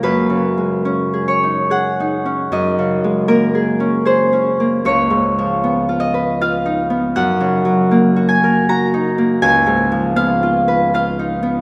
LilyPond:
<<
  \new Staff \with { instrumentName = "Harp" } { \time 3/4 \key ges \major \tempo 4 = 78 <aes' ces'' des''>4. des''8 ges''4 | ees''4 bes'4 c''4 | des''4. ees''8 f''4 | ges''4. aes''8 bes''4 |
aes''4 f''4 f''4 | }
  \new Staff \with { instrumentName = "Harp" } { \time 3/4 \key ges \major \tuplet 3/2 { <ges, aes des'>8 des8 aes8 des'8 aes'8 ees'8 aes'8 ees'8 des'8 } | \tuplet 3/2 { ges,8 des8 aes8 bes8 aes'8 des'8 aes'8 des'8 bes8 } | \tuplet 3/2 { des,8 aes,8 f8 ces'8 f'8 ces''8 f'8 ees'8 ces'8 } | \tuplet 3/2 { ges,8 des8 ges8 bes8 ges'8 bes'8 ges'8 ees'8 bes8 } |
\tuplet 3/2 { des,8 aes,8 f8 ces'8 f'8 ces''8 f'8 ees'8 ces'8 } | }
>>